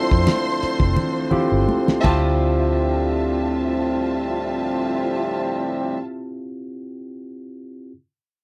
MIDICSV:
0, 0, Header, 1, 8, 480
1, 0, Start_track
1, 0, Key_signature, -1, "minor"
1, 0, Tempo, 692042
1, 665, Tempo, 726392
1, 1625, Time_signature, 4, 2, 24, 8
1, 1625, Tempo, 750939
1, 5475, End_track
2, 0, Start_track
2, 0, Title_t, "String section"
2, 0, Program_c, 0, 48
2, 0, Note_on_c, 0, 72, 97
2, 0, Note_on_c, 0, 84, 109
2, 1352, Note_off_c, 0, 84, 0
2, 1353, Note_off_c, 0, 72, 0
2, 1377, Note_on_c, 0, 65, 90
2, 1377, Note_on_c, 0, 76, 87
2, 1377, Note_on_c, 0, 81, 97
2, 3901, Note_off_c, 0, 65, 0
2, 3901, Note_off_c, 0, 76, 0
2, 3901, Note_off_c, 0, 81, 0
2, 5475, End_track
3, 0, Start_track
3, 0, Title_t, "Tine electric piano"
3, 0, Program_c, 1, 4
3, 0, Control_c, 1, 64, 127
3, 0, Note_on_c, 1, 60, 92
3, 0, Note_on_c, 1, 64, 79
3, 0, Note_on_c, 1, 65, 84
3, 0, Note_on_c, 1, 69, 100
3, 328, Note_off_c, 1, 60, 0
3, 329, Note_off_c, 1, 64, 0
3, 329, Note_off_c, 1, 65, 0
3, 332, Note_off_c, 1, 69, 0
3, 894, Note_on_c, 1, 60, 79
3, 896, Note_on_c, 1, 64, 65
3, 901, Note_on_c, 1, 65, 75
3, 905, Note_on_c, 1, 67, 96
3, 1353, Note_off_c, 1, 60, 0
3, 1361, Note_on_c, 1, 60, 88
3, 1365, Note_off_c, 1, 64, 0
3, 1372, Note_on_c, 1, 64, 69
3, 1376, Note_off_c, 1, 65, 0
3, 1382, Note_off_c, 1, 67, 0
3, 1384, Note_on_c, 1, 65, 78
3, 1387, Control_c, 1, 64, 0
3, 1395, Note_on_c, 1, 67, 96
3, 1479, Control_c, 1, 64, 127
3, 1632, Control_c, 1, 64, 0
3, 1733, Control_c, 1, 64, 127
3, 3885, Note_off_c, 1, 60, 0
3, 3897, Note_off_c, 1, 64, 0
3, 3908, Note_off_c, 1, 65, 0
3, 3918, Note_off_c, 1, 67, 0
3, 5151, Control_c, 1, 64, 0
3, 5475, End_track
4, 0, Start_track
4, 0, Title_t, "Harmonium"
4, 0, Program_c, 2, 20
4, 0, Note_on_c, 2, 50, 84
4, 0, Note_on_c, 2, 53, 67
4, 0, Note_on_c, 2, 57, 73
4, 0, Note_on_c, 2, 60, 76
4, 0, Note_on_c, 2, 62, 82
4, 1351, Note_off_c, 2, 50, 0
4, 1367, Note_off_c, 2, 60, 0
4, 1370, Note_off_c, 2, 53, 0
4, 1370, Note_off_c, 2, 57, 0
4, 1370, Note_off_c, 2, 62, 0
4, 1377, Note_on_c, 2, 60, 64
4, 1380, Note_on_c, 2, 55, 68
4, 1383, Note_on_c, 2, 53, 60
4, 1384, Note_on_c, 2, 50, 65
4, 1388, Note_on_c, 2, 76, 74
4, 3901, Note_off_c, 2, 60, 0
4, 3904, Note_off_c, 2, 55, 0
4, 3906, Note_off_c, 2, 53, 0
4, 3908, Note_off_c, 2, 50, 0
4, 3911, Note_off_c, 2, 76, 0
4, 5475, End_track
5, 0, Start_track
5, 0, Title_t, "Trombone section"
5, 0, Program_c, 3, 61
5, 1380, Note_on_c, 3, 55, 67
5, 1381, Note_on_c, 3, 45, 65
5, 1384, Note_on_c, 3, 60, 85
5, 3904, Note_off_c, 3, 55, 0
5, 3905, Note_off_c, 3, 45, 0
5, 3907, Note_off_c, 3, 60, 0
5, 5475, End_track
6, 0, Start_track
6, 0, Title_t, "Fingered electric bass"
6, 0, Program_c, 4, 33
6, 82, Note_on_c, 4, 41, 94
6, 176, Note_off_c, 4, 41, 0
6, 557, Note_on_c, 4, 29, 89
6, 656, Note_off_c, 4, 29, 0
6, 1034, Note_on_c, 4, 31, 80
6, 1130, Note_off_c, 4, 31, 0
6, 1385, Note_on_c, 4, 38, 86
6, 3908, Note_off_c, 4, 38, 0
6, 5475, End_track
7, 0, Start_track
7, 0, Title_t, "Muted fingered electric bass strokes"
7, 436, Note_on_c, 9, 29, 44
7, 506, Note_off_c, 9, 29, 0
7, 910, Note_on_c, 9, 29, 49
7, 976, Note_off_c, 9, 29, 0
7, 5475, End_track
8, 0, Start_track
8, 0, Title_t, "Drums"
8, 79, Note_on_c, 9, 36, 101
8, 149, Note_off_c, 9, 36, 0
8, 186, Note_on_c, 9, 42, 85
8, 186, Note_on_c, 9, 63, 77
8, 193, Note_on_c, 9, 38, 110
8, 256, Note_off_c, 9, 42, 0
8, 256, Note_off_c, 9, 63, 0
8, 263, Note_off_c, 9, 38, 0
8, 435, Note_on_c, 9, 42, 72
8, 504, Note_off_c, 9, 42, 0
8, 553, Note_on_c, 9, 36, 94
8, 623, Note_off_c, 9, 36, 0
8, 669, Note_on_c, 9, 62, 52
8, 669, Note_on_c, 9, 64, 71
8, 735, Note_off_c, 9, 62, 0
8, 735, Note_off_c, 9, 64, 0
8, 898, Note_on_c, 9, 64, 75
8, 964, Note_off_c, 9, 64, 0
8, 1144, Note_on_c, 9, 63, 75
8, 1211, Note_off_c, 9, 63, 0
8, 1275, Note_on_c, 9, 38, 79
8, 1276, Note_on_c, 9, 63, 74
8, 1341, Note_off_c, 9, 38, 0
8, 1342, Note_off_c, 9, 63, 0
8, 1380, Note_on_c, 9, 49, 82
8, 1381, Note_on_c, 9, 36, 112
8, 1382, Note_on_c, 9, 62, 75
8, 1446, Note_off_c, 9, 49, 0
8, 1447, Note_off_c, 9, 36, 0
8, 1448, Note_off_c, 9, 62, 0
8, 5475, End_track
0, 0, End_of_file